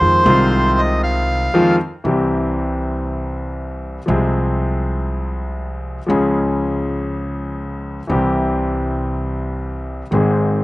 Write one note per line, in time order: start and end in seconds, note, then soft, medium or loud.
0.00 0.22 F2 soft
0.00 0.22 D#3 soft
0.00 0.22 F3 soft
0.00 0.23 G#3 soft
0.00 0.22 C4 soft
0.00 0.23 F4 soft
0.00 0.81 C5 medium
0.23 1.47 C2 medium
0.23 1.47 C3 medium
0.23 1.46 D#3 medium
0.23 1.47 G#3 medium
0.23 1.48 C4 medium
0.27 1.48 F4 medium
0.78 1.02 D#5 medium
1.03 1.76 F5 medium
1.54 1.76 F2 medium
1.54 1.75 D#3 medium
1.54 1.76 F3 medium
1.54 1.75 G#3 medium
1.54 1.76 C4 medium
1.54 1.76 F4 medium
2.04 3.97 C2 medium
2.04 3.98 C2 medium
2.04 3.98 C3 medium
2.04 3.97 E3 soft
2.04 3.97 G3 soft
2.04 3.98 C4 soft
2.04 3.99 G4 soft
4.06 5.98 C2 medium
4.06 5.99 C2 medium
4.06 5.98 C3 medium
4.06 5.97 F3 soft
4.06 5.98 G#3 soft
4.06 5.99 C4 soft
4.10 5.99 G#4 medium
6.07 7.99 C#2 medium
6.07 8.00 C#2 medium
6.07 7.99 C#3 medium
6.07 7.98 F3 soft
6.07 7.99 G#3 soft
6.07 8.00 C#4 soft
6.11 8.00 G#4 medium
8.07 10.01 C2 medium
8.07 10.01 C3 medium
8.07 10.00 E3 soft
8.07 10.01 G3 soft
8.07 10.02 C4 soft
8.11 10.02 G4 medium
10.11 10.64 G#1 medium
10.11 10.64 G#2 soft
10.11 10.64 D#3 soft
10.11 10.64 G#3 soft
10.11 10.64 C4 soft
10.15 10.64 G#4 soft